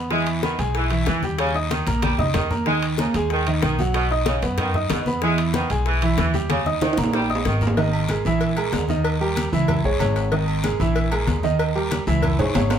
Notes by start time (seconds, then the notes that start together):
Already playing: E2
0.10 E3 G#3 E4 E5, high bongo, high conga, long guiro
0.27 high timbale
0.43 D#3 B3 B4 B5, high bongo, high conga, short guiro
0.59 B1 G#3 G#4 G#5, high conga, high timbale, short guiro
0.75 E3, high bongo, high conga, long guiro
0.90 E3 E4 E5, high conga, high timbale
1.06 D#2 E3, high bongo, low bongo, high conga, high timbale, short guiro
1.23 G3 G4 G5, high conga, short guiro
1.39 C#3, high bongo, high conga, high timbale, long guiro
1.55 D#4 D#5 D#6, high bongo, high conga
1.71 D#3, high bongo, high conga, high timbale, short guiro
1.87 A#1 A#3 A#4 A#5, high bongo, high conga, high timbale, short guiro
2.02 G3, high bongo, high conga, high timbale, long guiro
2.18 C#2 D#4 D#5 D#6, high bongo, low conga
2.34 D#2 D#3, high bongo, low bongo, low conga, high timbale, low timbale, short guiro
2.50 A#3 A#4 A#5, low conga, short guiro
2.66 D#3 G#3 D#4 D#5, high bongo, high conga, long guiro
2.83 high conga, high timbale
2.98 C#3 A#3 A#4 A#5, high bongo, high conga, short guiro
3.14 D#2 G#3 G#4 G#5, high conga, high timbale, short guiro
3.30 D#3, high bongo, high conga, long guiro
3.47 D#3 D#4 D#5, high timbale
3.62 B1 D#3, high bongo, low bongo, high conga, high timbale, short guiro
3.79 F#3 F#4 F#5, high conga, short guiro
3.94 B2, high bongo, high conga, high timbale, long guiro
4.10 D#4 D#5 D#6, high bongo, high conga
4.26 C#3, high bongo, high conga, high timbale, short guiro
4.42 F#2 B3 B4 B5, high bongo, high conga, high timbale, short guiro
4.58 D#3, high bongo, high conga, low conga, high timbale, long guiro
4.74 D#4 D#5 D#6, high bongo, high conga, low conga
4.90 E2 B2, high bongo, low bongo, high conga, high timbale, low timbale, short guiro
5.06 B3 B4 B5, high conga, short guiro
5.22 E3 G#3 E4 E5, high bongo, high conga, long guiro
5.38 high conga, high timbale
5.54 D#3 B3 B4 B5, high bongo, high conga, short guiro
5.70 B1 G#3 G#4 G#5, high conga, high timbale, short guiro
5.86 E3, high bongo, high conga, long guiro
6.02 E3 E4 E5, high conga, high timbale
6.18 D#2 E3, high bongo, low bongo, high conga, high timbale, short guiro
6.34 G3 G4 G5, high conga, short guiro
6.50 C#3, high bongo, high conga, high timbale, long guiro
6.66 D#4 D#5 D#6, high bongo, high conga
6.81 D#3, high bongo, high conga, high timbale, short guiro
6.93 high timbale
6.97 A#1 A#3 A#4 A#5, high bongo, high conga, short guiro
7.04 low timbale
7.14 G3, high bongo, high timbale, long guiro
7.29 D#4 D#5 D#6, high bongo
7.35 low timbale
7.45 G#1 D#3, high bongo, low bongo, short guiro
7.61 A#3 A#4 A#5, low conga, short guiro
7.67 low timbale
7.77 D#3 D#4 D#5, cowbell, high conga, low agogo, long guiro
7.93 high conga, low agogo
8.09 G#3 G#4 A#4, cowbell, high conga, low agogo, short guiro
8.25 A#1 E3 E4 E5, high conga, short guiro
8.41 cowbell, high conga, low agogo, long guiro
8.57 G#3 G#4 A#4, cowbell, high conga, low agogo
8.73 D#2, cowbell, high conga, low timbale, short guiro
8.89 D#3 D#4 D#5, high conga, short guiro
9.04 cowbell, high conga, low agogo, long guiro
9.21 G3 G4 A#4, high conga, low agogo
9.36 cowbell, high conga, low agogo, short guiro
9.53 C#2 E3 E4 E5, high conga, short guiro
9.68 cowbell, high conga, low conga, low agogo, long guiro
9.84 A#1 G#3 G#4 C#5, high conga
10.00 G#1 G#3 G#4 C#5, cowbell, high conga, low agogo, short guiro
10.16 cowbell, low agogo, short guiro
10.32 D#3 D#4 D#5, cowbell, high conga, low agogo, long guiro
10.48 high conga, low agogo
10.64 G#3 G#4 A#4, cowbell, high conga, low agogo, short guiro
10.80 A#1 E3 E4 E5, high conga, short guiro
10.96 cowbell, high conga, low agogo, long guiro
11.11 G#3 G#4 A#4, cowbell, high conga, low agogo
11.27 D#2, cowbell, high conga, low timbale, short guiro
11.43 D#3 D#4 D#5, high conga, short guiro
11.59 cowbell, high conga, low agogo, long guiro
11.75 G3 G4 A#4, high conga, low agogo
11.91 cowbell, high conga, low agogo, short guiro
12.07 C#2 E3 E4 E5, high conga, short guiro
12.22 cowbell, high conga, low conga, low agogo, long guiro
12.39 A#1 G#3 G#4 C#5, high conga, low conga, high timbale
12.54 G#1 G#3 G#4 C#5, cowbell, high conga, low timbale, low agogo, short guiro
12.70 cowbell, low timbale, low agogo, short guiro